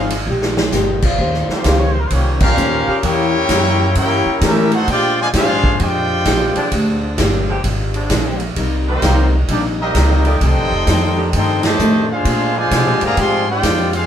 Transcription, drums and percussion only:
0.10 ride medium
0.42 snare medium
0.57 snare loud
0.72 snare medium
0.72 hi-hat pedal medium
1.02 kick medium
1.02 crash medium
1.19 kick soft
1.34 snare soft
1.49 snare medium
1.64 kick soft
1.64 snare medium
1.64 hi-hat pedal medium
1.64 ride medium
2.10 kick soft
2.10 ride medium
2.40 kick loud
2.40 crash medium
2.57 hi-hat pedal medium
3.03 kick soft
3.03 ride medium
3.49 kick soft
3.49 snare medium
3.49 hi-hat pedal medium
3.49 ride medium
3.95 kick soft
3.95 ride medium
4.41 kick soft
4.41 snare medium
4.41 hi-hat pedal medium
4.41 ride medium
4.72 ride medium
4.88 kick soft
4.88 ride medium
5.33 kick soft
5.33 snare medium
5.33 hi-hat pedal medium
5.33 ride medium
5.64 kick medium
5.80 kick soft
5.80 ride medium
6.25 kick soft
6.25 snare medium
6.25 hi-hat pedal medium
6.25 ride medium
6.56 ride medium
6.72 kick soft
6.72 ride medium
7.18 kick soft
7.18 snare medium
7.18 hi-hat pedal medium
7.18 ride medium
7.64 kick soft
7.64 ride medium
7.94 ride medium
8.10 kick soft
8.10 snare medium
8.10 hi-hat pedal medium
8.10 ride medium
8.40 ride medium
8.56 kick soft
8.56 ride medium
9.02 kick soft
9.02 snare medium
9.02 hi-hat pedal medium
9.02 ride medium
9.48 kick soft
9.48 ride medium
9.95 kick soft
9.95 snare medium
9.95 hi-hat pedal medium
9.95 ride medium
10.25 ride soft
10.41 kick soft
10.41 ride medium
10.87 kick soft
10.87 snare medium
10.87 hi-hat pedal medium
10.87 ride medium
11.33 kick soft
11.33 ride medium
11.63 snare loud
11.63 ride medium
11.79 hi-hat pedal medium
12.25 kick soft
12.25 ride medium
12.71 kick soft
12.71 snare medium
12.71 hi-hat pedal medium
12.71 ride medium
13.01 ride medium
13.17 kick soft
13.17 ride medium
13.63 kick soft
13.63 snare medium
13.63 hi-hat pedal medium
13.63 ride medium
13.93 ride medium

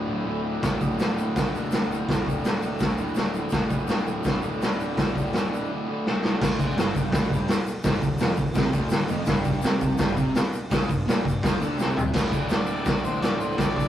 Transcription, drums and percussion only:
0.63 kick loud
0.63 snare loud
0.63 open hi-hat medium
0.63 shaker medium
0.81 kick medium
0.81 shaker medium
0.99 snare loud
0.99 open hi-hat medium
0.99 shaker medium
1.18 shaker medium
1.36 kick loud
1.36 snare loud
1.36 open hi-hat medium
1.36 shaker loud
1.45 shaker soft
1.55 shaker medium
1.64 shaker soft
1.71 snare loud
1.71 open hi-hat medium
1.71 shaker loud
1.92 shaker medium
2.09 kick loud
2.09 snare loud
2.09 open hi-hat medium
2.09 shaker medium
2.26 kick medium
2.26 shaker medium
2.38 shaker soft
2.44 snare loud
2.44 open hi-hat medium
2.44 shaker loud
2.62 shaker medium
2.79 kick loud
2.79 snare loud
2.79 open hi-hat medium
2.79 shaker loud
2.88 shaker soft
2.98 shaker medium
3.07 shaker soft
3.15 snare loud
3.15 open hi-hat medium
3.15 shaker loud
3.34 shaker medium
3.49 kick loud
3.49 snare loud
3.49 open hi-hat medium
3.49 shaker loud
3.70 kick medium
3.70 shaker medium
3.87 snare loud
3.87 open hi-hat medium
3.87 shaker loud
3.98 shaker soft
4.07 shaker medium
4.23 kick loud
4.23 snare loud
4.23 open hi-hat medium
4.23 shaker loud
4.42 shaker medium
4.62 snare loud
4.62 open hi-hat medium
4.62 shaker medium
4.80 shaker medium
4.97 kick loud
4.97 snare loud
4.97 open hi-hat medium
4.97 shaker medium
5.15 kick medium
5.15 shaker medium
5.33 snare loud
5.33 open hi-hat medium
5.33 shaker medium
5.54 shaker medium
6.06 snare medium
6.24 snare medium
6.41 kick loud
6.41 snare loud
6.41 crash loud
6.41 shaker medium
6.59 kick medium
6.59 shaker medium
6.70 shaker soft
6.77 snare loud
6.77 open hi-hat medium
6.77 shaker medium
6.95 kick medium
6.95 shaker medium
7.12 kick loud
7.12 snare loud
7.12 open hi-hat medium
7.12 shaker loud
7.30 kick medium
7.30 shaker medium
7.48 snare loud
7.48 open hi-hat medium
7.48 shaker loud
7.66 shaker medium
7.83 kick loud
7.83 snare loud
7.83 open hi-hat medium
7.83 shaker loud
7.94 shaker soft
8.02 kick medium
8.02 shaker medium
8.11 shaker soft
8.18 snare loud
8.18 open hi-hat medium
8.18 shaker loud
8.36 kick medium
8.36 shaker medium
8.46 shaker soft
8.54 kick loud
8.54 snare loud
8.54 open hi-hat medium
8.54 shaker loud
8.65 shaker soft
8.73 kick medium
8.73 shaker medium
8.89 snare loud
8.89 open hi-hat medium
8.89 shaker loud
9.08 shaker medium
9.26 kick loud
9.26 snare loud
9.26 open hi-hat medium
9.26 shaker medium
9.44 kick medium
9.44 shaker medium
9.52 shaker soft
9.62 snare loud
9.62 open hi-hat medium
9.62 shaker loud
9.81 kick medium
9.81 shaker medium
9.98 kick loud
9.98 snare loud
9.98 open hi-hat medium
9.98 shaker loud
10.08 shaker soft
10.17 kick medium
10.17 shaker medium
10.35 snare loud
10.35 open hi-hat medium
10.35 shaker loud
10.53 shaker medium
10.71 kick loud
10.71 snare loud
10.71 open hi-hat medium
10.71 shaker medium
10.89 kick medium
10.89 shaker medium
10.99 shaker soft
11.08 snare loud
11.08 open hi-hat medium
11.08 shaker loud
11.25 kick medium
11.25 shaker medium
11.43 kick loud
11.43 snare loud
11.43 open hi-hat medium
11.43 shaker loud
11.62 shaker medium
11.79 snare medium
11.79 shaker loud
11.90 shaker soft
11.97 floor tom medium
11.97 shaker medium
12.13 kick loud
12.13 snare loud
12.13 crash loud
12.13 crash medium
12.13 shaker medium
12.32 kick medium
12.32 shaker medium
12.40 shaker soft
12.49 snare loud
12.49 crash medium
12.49 shaker loud
12.66 shaker medium
12.85 kick loud
12.85 snare loud
12.85 crash medium
12.85 shaker loud
12.97 shaker soft
13.04 shaker medium
13.22 snare loud
13.22 crash medium
13.22 shaker loud
13.41 shaker medium
13.58 kick loud
13.58 snare loud
13.58 crash medium
13.58 shaker loud
13.70 shaker soft
13.76 kick medium
13.76 shaker medium

